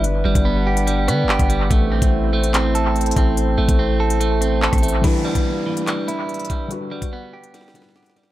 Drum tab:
HH |x-----------------x-----------------------x-----x-----------x-----------------x-----x-----------|x-----------------x-----------------------x-----x-----------x-----------x--x--x--x--x-----------|x-----------------x-----------------------x-----x-----------x-----------------x--x--x--x--------|x-----------------x-----------------------x-----x-----------x-----------x--x--x--x--x-----------|
CP |------------------------------------------------------------------------x-----------------------|------------------------------------------------x-----------------------------------------------|------------------------------------------------------------------------x-----------------------|------------------------------------------------x-----------------------------------------------|
SD |------------------------------------------------------------r-----------------------------------|------------------------------------------------------------------------------------------------|------------------------------------------------------------------------------r-----------------|------------------------------------------------------------------------------------------------|
BD |------------------o-----------------------------------------------------------o-----------------|o-----------------o-----------------------------------------------------------------o-----------|------------------o-----------------------------------------------------------o-----------------|o-----------------o-----------------------------------------------------------------o-----------|

HH |x-----------------x-----------------------x-----x-----------x-----------------x-----x-----------|
CP |------------------------------------------------------------------------------------------------|
SD |------------------------------------------------o---o---o---o---o---o---o---o---o---o---o-------|
BD |------------------o-----------------------------------------------------------------------------|